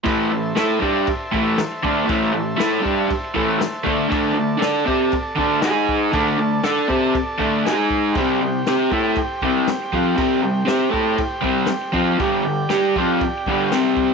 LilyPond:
<<
  \new Staff \with { instrumentName = "Transistor combo organ" } { \time 4/4 \key a \minor \tempo 4 = 119 <c'' e'' a''>1~ | <c'' e'' a''>1 | <a' d'' a''>2. <gis' dis'' gis''>4 | <a' d'' a''>2. <gis' dis'' gis''>4 |
<g' c'' g''>1~ | <g' c'' g''>1 | <g' d'' g''>2. <g' c'' g''>4 | }
  \new Staff \with { instrumentName = "Overdriven electric guitar" } { \time 4/4 \key a \minor <a, e a>8 <a, e>8 <a e' a'>8 <g d' g'>8 r8 <a, e a>8 r8 <d a d'>8 | <a, e a>8 <a, e>8 <a e' a'>8 <g d' g'>8 r8 <a, e a>8 r8 <d a d'>8 | <d a d'>8 <d a>8 <d' a' d''>8 <c' g' c''>8 r8 <d a d'>8 <gis dis' gis'>4 | <d a d'>8 <d a>8 <d' a' d''>8 <c' g' c''>8 r8 <d a d'>8 <gis dis' gis'>4 |
<c g c'>8 <c g>8 <c' g' c''>8 <a e' a'>8 r8 <c g c'>8 r8 <f c' f'>8 | <c g c'>8 <c g>8 <c' g' c''>8 <a e' a'>8 r8 <c g c'>8 r8 <f c' f'>8 | <g, d g>8 <g, d>8 <g d' g'>8 <f c' f'>8 r8 <g, d g>8 <c g c'>4 | }
  \new DrumStaff \with { instrumentName = "Drums" } \drummode { \time 4/4 <cymc bd>4 <cymc sn>8 bd8 <cymc bd>8 bd8 <cymc sn>8 bd8 | <cymc bd>4 <cymc sn>8 bd8 <cymc bd>8 bd8 <cymc sn>8 bd8 | <cymc bd>4 <cymc sn>8 bd8 <cymc bd>8 bd8 <cymc sn>8 bd8 | <cymc bd>4 <cymc sn>8 bd8 <cymc bd>8 bd8 <cymc sn>8 bd8 |
<cymc bd>4 <cymc sn>8 bd8 <cymc bd>8 bd8 <cymc sn>8 bd8 | <cymc bd>4 <cymc sn>8 bd8 <cymc bd>8 bd8 <cymc sn>8 bd8 | <cymc bd>4 <cymc sn>8 bd8 <cymc bd>8 bd8 <cymc sn>8 bd8 | }
>>